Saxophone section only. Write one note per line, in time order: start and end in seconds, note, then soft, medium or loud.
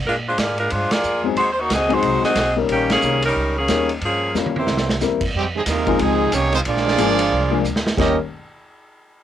0.07 0.16 G#3 medium
0.07 0.16 D4 medium
0.07 0.16 F4 medium
0.07 0.16 A#4 medium
0.28 0.39 G#3 medium
0.28 0.38 D4 medium
0.28 0.38 F4 medium
0.28 0.39 C5 medium
0.39 0.59 A#3 medium
0.39 0.59 F4 medium
0.39 0.59 G#4 medium
0.39 0.59 D5 medium
0.59 0.71 G#3 medium
0.59 0.71 D4 medium
0.59 0.70 F4 medium
0.59 0.71 A#4 medium
0.72 0.92 G#3 medium
0.72 0.92 D4 medium
0.72 0.92 F4 medium
0.72 0.92 C5 loud
0.92 1.25 A#3 medium
0.92 1.25 F4 medium
0.92 1.25 G#4 medium
0.92 1.25 D5 loud
1.38 1.52 G#3 medium
1.38 1.52 D#4 medium
1.38 1.52 F#4 medium
1.38 1.51 C5 loud
1.53 1.58 C5 medium
1.60 1.72 A#3 medium
1.60 1.71 D#4 medium
1.60 1.72 F#4 medium
1.60 1.71 C#5 medium
1.73 1.92 C4 medium
1.73 1.92 F#4 medium
1.73 1.92 G#4 medium
1.73 1.92 D#5 loud
1.93 2.25 G#3 medium
1.93 2.25 D#4 medium
1.93 2.24 F#4 medium
1.93 2.25 C5 loud
2.25 2.55 C4 medium
2.25 2.55 F#4 medium
2.25 2.55 G#4 medium
2.25 2.55 D#5 loud
2.72 2.90 D#3 medium
2.72 2.90 A#3 medium
2.72 2.90 C#4 medium
2.72 2.90 G4 medium
2.91 3.22 D#3 medium
2.91 3.21 A#3 medium
2.91 3.22 C#4 medium
2.91 3.22 G#4 medium
3.26 3.56 G3 medium
3.26 3.55 C#4 medium
3.26 3.55 D#4 medium
3.26 3.55 A#4 medium
3.59 3.90 D#3 medium
3.59 3.90 A#3 medium
3.59 3.90 C#4 medium
3.59 3.90 G#4 medium
4.04 4.34 F3 medium
4.04 4.34 A#3 medium
4.04 4.34 C#4 medium
4.04 4.34 G#4 medium
4.59 4.99 A#3 medium
4.59 4.99 E4 medium
4.59 4.99 G4 medium
4.59 4.99 C5 medium